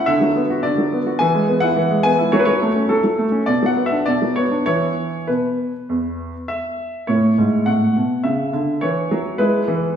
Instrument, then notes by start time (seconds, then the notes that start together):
grand piano
0.06 D3 E5
0.21 F#3
0.36 B3
0.50 F#4
0.63 D3 D5
0.78 F#3
0.93 B3
1.06 F#4
1.19 E3 G#5
1.35 G#3
1.48 B3
1.60 E4 F#5
1.77 E3
1.90 G#3
2.03 B3 G#5
2.19 E4
2.32 F#3 C#5
2.40 B4
2.45 F#3 C#5
2.62 A3
2.76 C#4
2.89 F#3 A4
3.04 F#3
3.18 A3
3.32 C#4
3.46 B2 D5
3.62 F#3 F#5
3.76 B3
3.86 E5
3.92 D4
4.06 B2 D5
4.22 F#3
4.36 B3 C#5
4.52 D4
4.66 E3 B3 E4 C#5
5.27 B2 B4
5.89 E2
6.48 E5
7.07 A2 E4 C#5
7.38 G#2
7.66 A2 F#5
7.96 B2
8.24 C#3 E5
8.53 D3
8.81 E3 C#5
9.11 F#3
9.38 G#3 E4 B4
9.68 E3